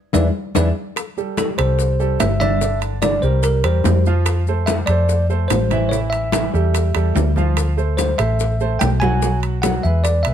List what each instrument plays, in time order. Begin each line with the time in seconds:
0.13 fingered electric bass E2, grand piano D4 E4 G#4, tine electric piano B4 D5 E5, low bongo, high conga, high timbale, maracas
0.55 fingered electric bass E2, grand piano D4 E4 G#4, tine electric piano B4 D5 E5, low bongo, high conga, high timbale, maracas
0.96 high bongo, high conga, high timbale, maracas
1.17 grand piano G3 G4 A4, high conga, maracas
1.37 tine electric piano A4, high bongo, high conga, high timbale, low timbale, maracas
1.58 fingered electric bass C2, grand piano G3 G4 A4, tine electric piano C5, high bongo, high conga, high timbale, maracas
1.79 high bongo, high conga, maracas
1.99 grand piano G3 G4 A4, high bongo, high conga, maracas
2.20 fingered electric bass G1, tine electric piano E5, high bongo, low bongo, high conga, high timbale, low timbale, maracas
2.40 grand piano D3 D4 D5, tine electric piano E5, high bongo, high conga, high timbale, maracas
2.61 grand piano D3 D4 D5, high bongo, high conga, maracas
2.82 high conga, high timbale, maracas
3.02 grand piano D3 D4 D5, tine electric piano D5, high bongo, high conga, high timbale, low timbale, maracas
3.22 fingered electric bass C2, grand piano G3 G4 A#4, tine electric piano C5, high bongo, high conga, maracas
3.43 tine electric piano A#4, high bongo, high conga, high timbale, maracas
3.64 fingered electric bass E2, grand piano G3 G4 A#4, tine electric piano C5, high bongo, high conga, high timbale, maracas
3.84 fingered electric bass F2, high bongo, low bongo, high conga, low timbale, maracas
4.05 grand piano F3 F4 F5, high bongo, maracas
4.26 high bongo, high conga, high timbale, maracas
4.47 grand piano A3 A4 C5, high conga, maracas
4.66 tine electric piano E5, high bongo, high conga, high timbale, low timbale, maracas
4.86 fingered electric bass F2, grand piano A3 A4 C5, tine electric piano D5, high bongo, high conga, high timbale, maracas
5.09 high bongo, high conga, maracas
5.30 grand piano A3 A4 C5, high bongo, high conga, maracas
5.48 fingered electric bass A1, tine electric piano C5, high bongo, low bongo, high conga, high timbale, low timbale, maracas
5.71 grand piano E3 E4 E5, high bongo, high conga, high timbale, maracas
5.89 grand piano E3 E4 E5, tine electric piano C#5, high bongo, high conga, maracas
6.10 tine electric piano E5, high conga, high timbale, maracas
6.32 grand piano E3 E4 E5, high bongo, high conga, high timbale, low timbale, maracas
6.53 fingered electric bass E2, grand piano G3 G4 A4, high bongo, high conga, maracas
6.74 high bongo, high conga, high timbale, maracas
6.94 fingered electric bass E2, grand piano G3 G4 A4, high bongo, high conga, high timbale, maracas
7.15 fingered electric bass D2, high bongo, low bongo, high conga, low timbale, maracas
7.36 grand piano F3 F4 F5, high bongo, high conga, maracas
7.57 high bongo, high conga, high timbale, maracas
7.77 grand piano A3 A4 C5, high conga, maracas
7.97 tine electric piano C5, high bongo, high conga, high timbale, low timbale, maracas
8.18 fingered electric bass A1, grand piano A3 A4 C5, tine electric piano E5, high bongo, high conga, high timbale, maracas
8.40 high bongo, high conga, maracas
8.60 grand piano A3 A4 C5, high bongo, high conga, maracas
8.79 fingered electric bass B1, tine electric piano G5, high bongo, low bongo, high conga, high timbale, low timbale, maracas
9.00 grand piano F#3 F#4 F#5, tine electric piano G#5, high bongo, high conga, high timbale, maracas
9.22 grand piano F#3 F#4 F#5, high bongo, high conga, maracas
9.43 high conga, high timbale, maracas
9.62 grand piano F#3 F#4 F#5, tine electric piano F#5, high bongo, high conga, high timbale, low timbale, maracas
9.83 fingered electric bass E2, grand piano G#3 G#4 B4, tine electric piano E5, high bongo, high conga, maracas
10.04 tine electric piano D5, high bongo, high conga, high timbale, maracas
10.23 fingered electric bass B1, grand piano G#3 G#4 B4, tine electric piano E5, high bongo, high conga, high timbale, maracas